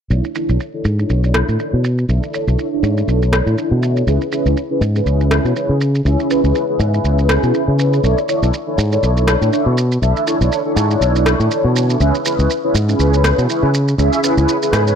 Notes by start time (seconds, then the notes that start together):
0.10 B1 D4 E4 A4 C#5, shaker
0.24 shaker
0.35 D4 E4 A4 C#5, shaker
0.49 B1 D4 E4 A4 C#5, shaker
0.60 shaker
0.73 D4 E4 A4 C#5
0.85 G#2, shaker
0.98 D4 E4 A4 C#5, shaker
1.10 B1, shaker
1.24 shaker
1.34 cross-stick, shaker
1.48 A2, shaker
1.59 D4 E4 A4 C#5, shaker
1.73 B2
1.84 shaker
1.98 shaker
2.08 B1 D4 E4 A4 E5, shaker
2.23 shaker
2.33 D4 E4 A4 C#5, shaker
2.47 B1 D4 E4 A4 C#5, shaker
2.59 shaker
2.72 D4 E4 A4 C#5
2.83 G#2, shaker
2.96 D4 E4 A4 C#5, shaker
3.08 B1, shaker
3.22 shaker
3.33 cross-stick, shaker
3.46 A2, shaker
3.58 shaker
3.71 B2
3.83 shaker
3.97 shaker
4.07 C#2 C#4 E4 G#4 B4, shaker
4.21 shaker
4.31 C#4 E4 G#4 B4, shaker
4.45 C#2 C#4 E4 G#4 B4, shaker
4.57 shaker
4.70 C#4 E4 G#4 B4
4.81 G#2, shaker
4.94 C#4 E4 G#4 B4, shaker
5.06 C#2, shaker
5.21 shaker
5.31 cross-stick, shaker
5.45 B2, shaker
5.55 C#4 E4 G#4 B4, shaker
5.69 C#3
5.81 shaker
5.95 shaker
6.05 C#2 C#4 E4 G#4 E5, shaker
6.20 shaker
6.29 C#4 E4 G#4 B4, shaker
6.44 C#2 C#4 E4 G#4 B4, shaker
6.55 shaker
6.68 C#4 E4 G#4 B4
6.79 G#2, shaker
6.93 C#4 E4 G#4 B4, shaker
7.04 C#2, shaker
7.19 shaker
7.29 cross-stick, shaker
7.43 B2, shaker
7.54 shaker
7.68 C#3
7.79 shaker
7.93 shaker
8.03 B1 D4 E4 A4 C#5, shaker
8.18 shaker
8.28 D4 E4 A4 C#5, shaker
8.42 B1 D4 E4 A4 C#5, shaker
8.54 shaker
8.66 D4 E4 A4 C#5
8.78 G#2, shaker
8.91 D4 E4 A4 C#5, shaker
9.03 B1, shaker
9.17 shaker
9.28 cross-stick, shaker
9.41 A2, shaker
9.52 D4 E4 A4 C#5, shaker
9.66 B2
9.78 shaker
9.92 shaker
10.01 B1 D4 E4 A4 E5, shaker
10.17 shaker
10.26 D4 E4 A4 C#5, shaker
10.40 B1 D4 E4 C#5, shaker
10.52 shaker
10.65 D4 E4 A4 C#5
10.76 G#2, shaker
10.89 D4 E4 A4 C#5, shaker
11.01 B1, shaker
11.16 shaker
11.26 cross-stick, shaker
11.40 A2, shaker
11.51 shaker
11.64 B2
11.76 shaker
11.90 shaker
12.00 C#2 C#4 E4 G#4 B4, shaker
12.15 shaker
12.24 C#4 E4 G#4 B4, shaker
12.39 C#2 C#4 E4 G#4 B4, shaker
12.50 shaker
12.63 C#4 E4 G#4 B4
12.74 G#2, shaker
12.88 C#4 E4 G#4 B4, shaker
12.99 C#2, shaker
13.14 shaker
13.24 cross-stick, shaker
13.38 B2, shaker
13.49 C#4 E4 G#4 B4, shaker
13.63 C#3
13.74 shaker
13.88 shaker
13.98 C#2 C#4 E4 G#4 E5, shaker
14.13 shaker
14.23 C#4 E4 G#4 B4, shaker
14.37 C#2 C#4 E4 G#4, shaker
14.49 shaker
14.62 C#4 E4 G#4 B4, shaker
14.73 G#2, cross-stick, shaker
14.86 C#4 E4 G#4 B4, shaker